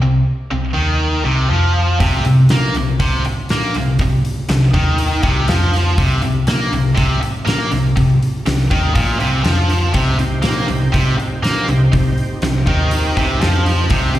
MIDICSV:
0, 0, Header, 1, 7, 480
1, 0, Start_track
1, 0, Key_signature, -3, "minor"
1, 0, Tempo, 495868
1, 23, Time_signature, 4, 2, 24, 8
1, 13739, End_track
2, 0, Start_track
2, 0, Title_t, "Tonewheel organ"
2, 0, Program_c, 0, 16
2, 9648, Note_on_c, 0, 72, 63
2, 9652, Note_on_c, 0, 67, 71
2, 9653, Note_on_c, 0, 60, 70
2, 9658, Note_on_c, 0, 63, 65
2, 13436, Note_off_c, 0, 72, 0
2, 13438, Note_off_c, 0, 60, 0
2, 13438, Note_off_c, 0, 67, 0
2, 13441, Note_off_c, 0, 63, 0
2, 13477, Note_on_c, 0, 60, 76
2, 13477, Note_on_c, 0, 67, 75
2, 13481, Note_on_c, 0, 63, 75
2, 13485, Note_on_c, 0, 72, 68
2, 13739, Note_off_c, 0, 60, 0
2, 13739, Note_off_c, 0, 63, 0
2, 13739, Note_off_c, 0, 67, 0
2, 13739, Note_off_c, 0, 72, 0
2, 13739, End_track
3, 0, Start_track
3, 0, Title_t, "Distorted electric guitar"
3, 0, Program_c, 1, 30
3, 17, Note_on_c, 1, 48, 61
3, 212, Note_off_c, 1, 48, 0
3, 497, Note_on_c, 1, 48, 60
3, 692, Note_off_c, 1, 48, 0
3, 720, Note_on_c, 1, 51, 91
3, 1203, Note_off_c, 1, 51, 0
3, 1207, Note_on_c, 1, 48, 90
3, 1445, Note_off_c, 1, 48, 0
3, 1449, Note_on_c, 1, 53, 82
3, 1930, Note_off_c, 1, 53, 0
3, 1936, Note_on_c, 1, 48, 83
3, 2169, Note_off_c, 1, 48, 0
3, 2181, Note_on_c, 1, 48, 63
3, 2376, Note_off_c, 1, 48, 0
3, 2430, Note_on_c, 1, 58, 93
3, 2661, Note_off_c, 1, 58, 0
3, 2669, Note_on_c, 1, 48, 56
3, 2860, Note_off_c, 1, 48, 0
3, 2901, Note_on_c, 1, 48, 98
3, 3137, Note_off_c, 1, 48, 0
3, 3397, Note_on_c, 1, 58, 95
3, 3626, Note_off_c, 1, 58, 0
3, 3635, Note_on_c, 1, 48, 70
3, 3824, Note_off_c, 1, 48, 0
3, 3882, Note_on_c, 1, 48, 70
3, 4068, Note_off_c, 1, 48, 0
3, 4351, Note_on_c, 1, 48, 61
3, 4543, Note_off_c, 1, 48, 0
3, 4584, Note_on_c, 1, 51, 84
3, 5061, Note_off_c, 1, 51, 0
3, 5064, Note_on_c, 1, 48, 89
3, 5301, Note_off_c, 1, 48, 0
3, 5320, Note_on_c, 1, 53, 84
3, 5789, Note_off_c, 1, 53, 0
3, 5798, Note_on_c, 1, 48, 86
3, 6017, Note_off_c, 1, 48, 0
3, 6029, Note_on_c, 1, 48, 72
3, 6223, Note_off_c, 1, 48, 0
3, 6267, Note_on_c, 1, 58, 94
3, 6503, Note_off_c, 1, 58, 0
3, 6512, Note_on_c, 1, 48, 61
3, 6705, Note_off_c, 1, 48, 0
3, 6724, Note_on_c, 1, 48, 102
3, 6966, Note_off_c, 1, 48, 0
3, 7219, Note_on_c, 1, 58, 77
3, 7459, Note_off_c, 1, 58, 0
3, 7459, Note_on_c, 1, 48, 68
3, 7659, Note_off_c, 1, 48, 0
3, 7704, Note_on_c, 1, 48, 65
3, 7901, Note_off_c, 1, 48, 0
3, 8193, Note_on_c, 1, 48, 66
3, 8386, Note_off_c, 1, 48, 0
3, 8429, Note_on_c, 1, 51, 85
3, 8655, Note_off_c, 1, 51, 0
3, 8659, Note_on_c, 1, 46, 97
3, 8895, Note_off_c, 1, 46, 0
3, 8899, Note_on_c, 1, 48, 85
3, 9129, Note_off_c, 1, 48, 0
3, 9133, Note_on_c, 1, 53, 79
3, 9615, Note_off_c, 1, 53, 0
3, 9619, Note_on_c, 1, 48, 92
3, 9847, Note_off_c, 1, 48, 0
3, 9859, Note_on_c, 1, 48, 62
3, 10058, Note_off_c, 1, 48, 0
3, 10089, Note_on_c, 1, 58, 88
3, 10323, Note_on_c, 1, 48, 62
3, 10334, Note_off_c, 1, 58, 0
3, 10530, Note_off_c, 1, 48, 0
3, 10574, Note_on_c, 1, 48, 98
3, 10807, Note_off_c, 1, 48, 0
3, 11065, Note_on_c, 1, 58, 81
3, 11301, Note_off_c, 1, 58, 0
3, 11307, Note_on_c, 1, 48, 76
3, 11501, Note_off_c, 1, 48, 0
3, 11542, Note_on_c, 1, 48, 63
3, 11738, Note_off_c, 1, 48, 0
3, 12033, Note_on_c, 1, 48, 67
3, 12223, Note_off_c, 1, 48, 0
3, 12263, Note_on_c, 1, 51, 87
3, 12738, Note_off_c, 1, 51, 0
3, 12751, Note_on_c, 1, 48, 92
3, 12977, Note_off_c, 1, 48, 0
3, 12980, Note_on_c, 1, 53, 83
3, 13453, Note_off_c, 1, 53, 0
3, 13457, Note_on_c, 1, 48, 95
3, 13682, Note_off_c, 1, 48, 0
3, 13693, Note_on_c, 1, 48, 69
3, 13739, Note_off_c, 1, 48, 0
3, 13739, End_track
4, 0, Start_track
4, 0, Title_t, "Picked electric bass"
4, 0, Program_c, 2, 34
4, 18, Note_on_c, 2, 36, 75
4, 244, Note_off_c, 2, 36, 0
4, 507, Note_on_c, 2, 36, 69
4, 729, Note_off_c, 2, 36, 0
4, 734, Note_on_c, 2, 39, 73
4, 1185, Note_off_c, 2, 39, 0
4, 1212, Note_on_c, 2, 36, 83
4, 1441, Note_off_c, 2, 36, 0
4, 1461, Note_on_c, 2, 41, 81
4, 1910, Note_off_c, 2, 41, 0
4, 1936, Note_on_c, 2, 36, 82
4, 2164, Note_off_c, 2, 36, 0
4, 2179, Note_on_c, 2, 36, 68
4, 2406, Note_off_c, 2, 36, 0
4, 2410, Note_on_c, 2, 46, 86
4, 2641, Note_off_c, 2, 46, 0
4, 2651, Note_on_c, 2, 36, 61
4, 2882, Note_off_c, 2, 36, 0
4, 2903, Note_on_c, 2, 36, 81
4, 3128, Note_off_c, 2, 36, 0
4, 3398, Note_on_c, 2, 46, 88
4, 3617, Note_off_c, 2, 46, 0
4, 3631, Note_on_c, 2, 36, 63
4, 3854, Note_off_c, 2, 36, 0
4, 3868, Note_on_c, 2, 36, 72
4, 4092, Note_off_c, 2, 36, 0
4, 4351, Note_on_c, 2, 36, 74
4, 4574, Note_off_c, 2, 36, 0
4, 4587, Note_on_c, 2, 39, 76
4, 5036, Note_off_c, 2, 39, 0
4, 5070, Note_on_c, 2, 36, 90
4, 5294, Note_off_c, 2, 36, 0
4, 5321, Note_on_c, 2, 41, 96
4, 5764, Note_off_c, 2, 41, 0
4, 5788, Note_on_c, 2, 36, 78
4, 6014, Note_off_c, 2, 36, 0
4, 6029, Note_on_c, 2, 36, 82
4, 6254, Note_off_c, 2, 36, 0
4, 6264, Note_on_c, 2, 46, 94
4, 6492, Note_off_c, 2, 46, 0
4, 6510, Note_on_c, 2, 36, 70
4, 6735, Note_off_c, 2, 36, 0
4, 6748, Note_on_c, 2, 36, 82
4, 6974, Note_off_c, 2, 36, 0
4, 7228, Note_on_c, 2, 46, 95
4, 7454, Note_off_c, 2, 46, 0
4, 7475, Note_on_c, 2, 36, 70
4, 7698, Note_off_c, 2, 36, 0
4, 7718, Note_on_c, 2, 36, 75
4, 7939, Note_off_c, 2, 36, 0
4, 8202, Note_on_c, 2, 36, 78
4, 8422, Note_off_c, 2, 36, 0
4, 8432, Note_on_c, 2, 39, 70
4, 8656, Note_off_c, 2, 39, 0
4, 8672, Note_on_c, 2, 34, 77
4, 8896, Note_off_c, 2, 34, 0
4, 8916, Note_on_c, 2, 36, 89
4, 9138, Note_off_c, 2, 36, 0
4, 9143, Note_on_c, 2, 41, 86
4, 9595, Note_off_c, 2, 41, 0
4, 9631, Note_on_c, 2, 36, 85
4, 9856, Note_off_c, 2, 36, 0
4, 9868, Note_on_c, 2, 36, 73
4, 10094, Note_off_c, 2, 36, 0
4, 10107, Note_on_c, 2, 46, 92
4, 10333, Note_off_c, 2, 46, 0
4, 10347, Note_on_c, 2, 36, 64
4, 10573, Note_off_c, 2, 36, 0
4, 10592, Note_on_c, 2, 36, 87
4, 10815, Note_off_c, 2, 36, 0
4, 11063, Note_on_c, 2, 46, 83
4, 11290, Note_off_c, 2, 46, 0
4, 11307, Note_on_c, 2, 36, 75
4, 11532, Note_off_c, 2, 36, 0
4, 11556, Note_on_c, 2, 36, 76
4, 11777, Note_off_c, 2, 36, 0
4, 12028, Note_on_c, 2, 36, 80
4, 12252, Note_off_c, 2, 36, 0
4, 12266, Note_on_c, 2, 39, 81
4, 12713, Note_off_c, 2, 39, 0
4, 12744, Note_on_c, 2, 36, 90
4, 12969, Note_off_c, 2, 36, 0
4, 12977, Note_on_c, 2, 41, 93
4, 13427, Note_off_c, 2, 41, 0
4, 13465, Note_on_c, 2, 36, 80
4, 13688, Note_off_c, 2, 36, 0
4, 13703, Note_on_c, 2, 36, 81
4, 13739, Note_off_c, 2, 36, 0
4, 13739, End_track
5, 0, Start_track
5, 0, Title_t, "Muted distorted electric guitar strokes"
5, 3149, Note_on_c, 9, 29, 52
5, 3246, Note_off_c, 9, 29, 0
5, 6978, Note_on_c, 9, 29, 50
5, 7075, Note_off_c, 9, 29, 0
5, 10819, Note_on_c, 9, 29, 50
5, 10916, Note_off_c, 9, 29, 0
5, 13739, End_track
6, 0, Start_track
6, 0, Title_t, "Muted picked electric bass strokes"
6, 3153, Note_on_c, 9, 29, 33
6, 3250, Note_off_c, 9, 29, 0
6, 6994, Note_on_c, 9, 29, 38
6, 7091, Note_off_c, 9, 29, 0
6, 10831, Note_on_c, 9, 29, 41
6, 10928, Note_off_c, 9, 29, 0
6, 13739, End_track
7, 0, Start_track
7, 0, Title_t, "Drums"
7, 1940, Note_on_c, 9, 36, 97
7, 1942, Note_on_c, 9, 46, 61
7, 2037, Note_off_c, 9, 36, 0
7, 2039, Note_off_c, 9, 46, 0
7, 2175, Note_on_c, 9, 46, 46
7, 2272, Note_off_c, 9, 46, 0
7, 2411, Note_on_c, 9, 46, 66
7, 2422, Note_on_c, 9, 38, 113
7, 2508, Note_off_c, 9, 46, 0
7, 2519, Note_off_c, 9, 38, 0
7, 2657, Note_on_c, 9, 46, 40
7, 2754, Note_off_c, 9, 46, 0
7, 2902, Note_on_c, 9, 46, 59
7, 2903, Note_on_c, 9, 36, 86
7, 2999, Note_off_c, 9, 46, 0
7, 3000, Note_off_c, 9, 36, 0
7, 3143, Note_on_c, 9, 46, 46
7, 3240, Note_off_c, 9, 46, 0
7, 3380, Note_on_c, 9, 46, 59
7, 3392, Note_on_c, 9, 38, 86
7, 3477, Note_off_c, 9, 46, 0
7, 3488, Note_off_c, 9, 38, 0
7, 3624, Note_on_c, 9, 46, 46
7, 3721, Note_off_c, 9, 46, 0
7, 3862, Note_on_c, 9, 46, 71
7, 3866, Note_on_c, 9, 36, 92
7, 3958, Note_off_c, 9, 46, 0
7, 3963, Note_off_c, 9, 36, 0
7, 4112, Note_on_c, 9, 46, 53
7, 4209, Note_off_c, 9, 46, 0
7, 4343, Note_on_c, 9, 46, 67
7, 4354, Note_on_c, 9, 38, 105
7, 4440, Note_off_c, 9, 46, 0
7, 4451, Note_off_c, 9, 38, 0
7, 4589, Note_on_c, 9, 36, 91
7, 4592, Note_on_c, 9, 46, 42
7, 4686, Note_off_c, 9, 36, 0
7, 4688, Note_off_c, 9, 46, 0
7, 4823, Note_on_c, 9, 46, 63
7, 4920, Note_off_c, 9, 46, 0
7, 5060, Note_on_c, 9, 46, 47
7, 5067, Note_on_c, 9, 36, 94
7, 5157, Note_off_c, 9, 46, 0
7, 5164, Note_off_c, 9, 36, 0
7, 5303, Note_on_c, 9, 46, 59
7, 5315, Note_on_c, 9, 38, 96
7, 5400, Note_off_c, 9, 46, 0
7, 5412, Note_off_c, 9, 38, 0
7, 5551, Note_on_c, 9, 46, 46
7, 5563, Note_on_c, 9, 38, 30
7, 5648, Note_off_c, 9, 46, 0
7, 5660, Note_off_c, 9, 38, 0
7, 5788, Note_on_c, 9, 46, 64
7, 5790, Note_on_c, 9, 36, 99
7, 5885, Note_off_c, 9, 46, 0
7, 5886, Note_off_c, 9, 36, 0
7, 6020, Note_on_c, 9, 46, 48
7, 6116, Note_off_c, 9, 46, 0
7, 6263, Note_on_c, 9, 46, 66
7, 6274, Note_on_c, 9, 38, 111
7, 6360, Note_off_c, 9, 46, 0
7, 6371, Note_off_c, 9, 38, 0
7, 6512, Note_on_c, 9, 46, 44
7, 6609, Note_off_c, 9, 46, 0
7, 6750, Note_on_c, 9, 46, 55
7, 6752, Note_on_c, 9, 36, 92
7, 6847, Note_off_c, 9, 46, 0
7, 6849, Note_off_c, 9, 36, 0
7, 6995, Note_on_c, 9, 46, 51
7, 7092, Note_off_c, 9, 46, 0
7, 7234, Note_on_c, 9, 46, 63
7, 7246, Note_on_c, 9, 38, 102
7, 7331, Note_off_c, 9, 46, 0
7, 7343, Note_off_c, 9, 38, 0
7, 7468, Note_on_c, 9, 46, 54
7, 7565, Note_off_c, 9, 46, 0
7, 7714, Note_on_c, 9, 36, 88
7, 7717, Note_on_c, 9, 46, 60
7, 7811, Note_off_c, 9, 36, 0
7, 7814, Note_off_c, 9, 46, 0
7, 7962, Note_on_c, 9, 46, 48
7, 8059, Note_off_c, 9, 46, 0
7, 8191, Note_on_c, 9, 46, 73
7, 8203, Note_on_c, 9, 38, 105
7, 8288, Note_off_c, 9, 46, 0
7, 8299, Note_off_c, 9, 38, 0
7, 8432, Note_on_c, 9, 36, 85
7, 8435, Note_on_c, 9, 46, 46
7, 8529, Note_off_c, 9, 36, 0
7, 8532, Note_off_c, 9, 46, 0
7, 8666, Note_on_c, 9, 46, 65
7, 8670, Note_on_c, 9, 36, 94
7, 8763, Note_off_c, 9, 46, 0
7, 8766, Note_off_c, 9, 36, 0
7, 8910, Note_on_c, 9, 46, 47
7, 9007, Note_off_c, 9, 46, 0
7, 9142, Note_on_c, 9, 46, 66
7, 9154, Note_on_c, 9, 38, 99
7, 9239, Note_off_c, 9, 46, 0
7, 9250, Note_off_c, 9, 38, 0
7, 9385, Note_on_c, 9, 46, 47
7, 9396, Note_on_c, 9, 38, 30
7, 9481, Note_off_c, 9, 46, 0
7, 9493, Note_off_c, 9, 38, 0
7, 9620, Note_on_c, 9, 46, 68
7, 9627, Note_on_c, 9, 36, 99
7, 9717, Note_off_c, 9, 46, 0
7, 9724, Note_off_c, 9, 36, 0
7, 9863, Note_on_c, 9, 46, 43
7, 9960, Note_off_c, 9, 46, 0
7, 10092, Note_on_c, 9, 46, 72
7, 10104, Note_on_c, 9, 38, 106
7, 10189, Note_off_c, 9, 46, 0
7, 10200, Note_off_c, 9, 38, 0
7, 10342, Note_on_c, 9, 46, 44
7, 10439, Note_off_c, 9, 46, 0
7, 10589, Note_on_c, 9, 36, 97
7, 10589, Note_on_c, 9, 46, 62
7, 10686, Note_off_c, 9, 36, 0
7, 10686, Note_off_c, 9, 46, 0
7, 10837, Note_on_c, 9, 46, 42
7, 10934, Note_off_c, 9, 46, 0
7, 11076, Note_on_c, 9, 46, 61
7, 11088, Note_on_c, 9, 38, 98
7, 11173, Note_off_c, 9, 46, 0
7, 11184, Note_off_c, 9, 38, 0
7, 11311, Note_on_c, 9, 46, 44
7, 11407, Note_off_c, 9, 46, 0
7, 11550, Note_on_c, 9, 36, 93
7, 11551, Note_on_c, 9, 46, 60
7, 11647, Note_off_c, 9, 36, 0
7, 11647, Note_off_c, 9, 46, 0
7, 11787, Note_on_c, 9, 46, 47
7, 11884, Note_off_c, 9, 46, 0
7, 12022, Note_on_c, 9, 46, 76
7, 12034, Note_on_c, 9, 38, 101
7, 12119, Note_off_c, 9, 46, 0
7, 12131, Note_off_c, 9, 38, 0
7, 12259, Note_on_c, 9, 46, 41
7, 12266, Note_on_c, 9, 36, 80
7, 12356, Note_off_c, 9, 46, 0
7, 12363, Note_off_c, 9, 36, 0
7, 12499, Note_on_c, 9, 46, 69
7, 12596, Note_off_c, 9, 46, 0
7, 12748, Note_on_c, 9, 36, 87
7, 12750, Note_on_c, 9, 46, 50
7, 12845, Note_off_c, 9, 36, 0
7, 12847, Note_off_c, 9, 46, 0
7, 12985, Note_on_c, 9, 46, 61
7, 12997, Note_on_c, 9, 38, 101
7, 13082, Note_off_c, 9, 46, 0
7, 13094, Note_off_c, 9, 38, 0
7, 13226, Note_on_c, 9, 46, 50
7, 13237, Note_on_c, 9, 38, 32
7, 13322, Note_off_c, 9, 46, 0
7, 13334, Note_off_c, 9, 38, 0
7, 13453, Note_on_c, 9, 46, 67
7, 13461, Note_on_c, 9, 36, 107
7, 13550, Note_off_c, 9, 46, 0
7, 13558, Note_off_c, 9, 36, 0
7, 13697, Note_on_c, 9, 46, 45
7, 13739, Note_off_c, 9, 46, 0
7, 13739, End_track
0, 0, End_of_file